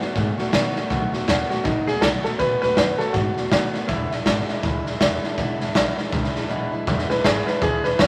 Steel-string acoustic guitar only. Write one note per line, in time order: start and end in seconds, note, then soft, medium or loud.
0.00 0.15 A3 soft
0.00 0.16 B3 soft
0.00 0.15 F#4 medium
0.15 0.38 D#3 medium
0.15 0.39 A3 medium
0.15 0.38 B3 medium
0.15 0.37 F#4 medium
0.38 0.52 A3 soft
0.38 0.53 B3 medium
0.38 0.53 F#4 medium
0.53 0.75 B2 medium
0.53 0.76 D#3 medium
0.53 0.76 A3 loud
0.53 0.76 B3 medium
0.53 0.74 F#4 loud
0.76 0.90 A3 soft
0.76 0.91 B3 medium
0.76 0.90 F#4 medium
0.90 1.13 B2 medium
0.90 1.13 D#3 medium
0.90 1.14 A3 medium
0.90 1.12 B3 loud
0.90 1.11 F#4 loud
1.12 1.27 A3 soft
1.12 1.28 B3 medium
1.12 1.27 F#4 medium
1.27 1.50 B2 medium
1.27 1.50 D#3 medium
1.27 1.51 A3 medium
1.27 1.50 B3 loud
1.27 1.48 F#4 loud
1.50 1.64 A3 soft
1.50 1.65 B3 soft
1.50 1.65 F#4 medium
1.65 1.88 D#3 medium
1.65 1.88 A3 medium
1.65 1.88 B3 medium
1.65 1.86 F#4 medium
1.88 2.02 A3 soft
1.88 2.03 B3 soft
1.88 2.02 F#4 soft
2.02 2.25 B2 medium
2.02 2.25 D#3 medium
2.02 2.26 A3 medium
2.02 2.25 B3 medium
2.02 2.24 F#4 medium
2.25 2.39 A3 soft
2.25 2.40 B3 medium
2.25 2.40 F#4 soft
2.39 2.62 B2 medium
2.39 2.63 D#3 medium
2.39 2.63 A3 medium
2.39 2.62 B3 medium
2.39 2.61 F#4 medium
2.62 2.76 A3 soft
2.62 2.77 B3 medium
2.62 2.77 F#4 medium
2.76 2.99 B2 medium
2.76 3.00 D#3 medium
2.76 3.00 A3 medium
2.76 2.99 B3 medium
2.76 2.98 F#4 loud
2.99 3.14 A3 soft
2.99 3.15 B3 soft
2.99 3.14 F#4 medium
3.14 3.37 D#3 medium
3.14 3.37 A3 medium
3.14 3.37 B3 medium
3.14 3.35 F#4 medium
3.37 3.52 A3 soft
3.37 3.52 B3 medium
3.37 3.51 F#4 medium
3.51 3.74 B2 medium
3.51 3.75 D#3 medium
3.51 3.75 A3 medium
3.51 3.74 B3 medium
3.51 3.73 F#4 medium
3.74 3.89 A3 medium
3.74 3.89 B3 medium
3.74 3.89 F#4 medium
3.88 4.11 E2 medium
3.88 4.12 B2 medium
3.88 4.12 E3 medium
3.88 4.12 G#3 medium
3.88 4.11 D4 medium
3.88 4.10 E4 medium
4.11 4.25 E3 soft
4.11 4.26 G#3 soft
4.11 4.26 D4 soft
4.11 4.26 E4 medium
4.26 4.49 E2 medium
4.26 4.49 B2 medium
4.26 4.49 E3 medium
4.26 4.49 G#3 loud
4.26 4.48 D4 medium
4.26 4.47 E4 loud
4.48 4.61 E3 soft
4.48 4.63 G#3 medium
4.48 4.63 D4 medium
4.48 4.63 E4 medium
4.62 4.86 E3 medium
4.62 4.86 G#3 medium
4.62 4.85 D4 medium
4.62 4.84 E4 medium
4.85 5.00 E3 soft
4.85 5.00 G#3 medium
4.85 5.00 D4 medium
4.85 5.00 E4 medium
5.00 5.23 E2 medium
5.00 5.24 B2 medium
5.00 5.24 E3 loud
5.00 5.24 G#3 loud
5.00 5.23 D4 loud
5.00 5.22 E4 loud
5.23 5.37 E3 soft
5.23 5.37 G#3 medium
5.23 5.38 D4 medium
5.23 5.38 E4 medium
5.37 5.61 E2 medium
5.37 5.61 B2 medium
5.37 5.61 E3 medium
5.37 5.61 G#3 loud
5.37 5.60 D4 medium
5.37 5.59 E4 medium
5.60 5.74 E3 medium
5.60 5.74 G#3 medium
5.60 5.75 D4 medium
5.60 5.75 E4 medium
5.74 5.98 E2 medium
5.74 5.98 B2 loud
5.74 5.98 E3 loud
5.74 5.98 G#3 medium
5.74 5.97 D4 loud
5.74 5.96 E4 loud
5.97 6.10 E3 soft
5.97 6.12 G#3 medium
5.97 6.13 D4 medium
5.97 6.12 E4 medium
6.12 6.35 E3 medium
6.12 6.36 G#3 medium
6.12 6.35 D4 medium
6.12 6.34 E4 medium
6.35 6.49 E3 medium
6.35 6.49 G#3 medium
6.35 6.50 D4 soft
6.35 6.50 E4 medium
6.49 6.72 E2 medium
6.49 6.73 B2 medium
6.49 6.73 E3 loud
6.49 6.73 G#3 loud
6.49 6.72 D4 loud
6.49 6.71 E4 loud
6.72 6.87 E3 soft
6.72 6.87 G#3 medium
6.72 6.87 D4 medium
6.72 6.87 E4 medium
6.87 7.10 E2 medium
6.87 7.10 B2 medium
6.87 7.10 E3 loud
6.87 7.10 G#3 medium
6.87 7.10 D4 medium
6.87 7.09 E4 loud
7.10 7.24 E3 medium
7.10 7.24 G#3 medium
7.10 7.25 D4 medium
7.10 7.25 E4 medium
7.24 7.47 E2 medium
7.24 7.47 B2 medium
7.24 7.47 E3 medium
7.24 7.47 G#3 medium
7.24 7.46 D4 medium
7.24 7.45 E4 medium
7.47 7.61 E3 soft
7.47 7.62 G#3 soft
7.47 7.62 D4 soft
7.47 7.61 E4 medium
7.62 7.85 E3 medium
7.62 7.85 G#3 medium
7.62 7.85 D4 medium
7.62 7.83 E4 medium
7.85 7.99 E3 soft
7.85 7.99 G#3 soft
7.85 8.00 D4 soft
7.85 7.99 E4 medium
7.99 8.07 E2 medium
7.99 8.07 B2 medium
7.99 8.07 E3 medium
7.99 8.07 G#3 medium
7.99 8.07 D4 loud
7.99 8.07 E4 medium